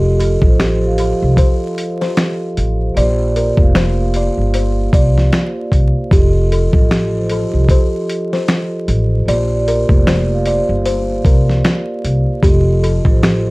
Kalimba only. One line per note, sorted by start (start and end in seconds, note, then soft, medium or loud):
0.00 0.16 G4 medium
0.19 0.55 A4 medium
0.60 0.95 G4 medium
0.99 1.34 A4 medium
1.38 1.97 C5 medium
2.01 2.16 C5 medium
2.97 3.32 D5 medium
3.36 3.75 A#4 medium
3.76 4.11 C5 medium
4.16 4.51 D5 medium
4.54 4.89 C5 medium
4.94 5.29 D5 medium
6.12 6.47 G4 medium
6.52 6.87 A4 medium
6.91 7.30 G4 medium
7.31 7.66 A4 medium
7.71 8.28 C5 medium
8.33 8.47 C5 medium
9.29 9.63 D5 medium
9.68 10.07 A#4 medium
10.08 10.42 C5 medium
10.47 10.82 D5 medium
10.86 11.25 C5 medium
11.25 11.84 A#4 medium
12.43 12.79 G4 medium
12.83 13.18 A4 medium
13.23 13.50 G4 medium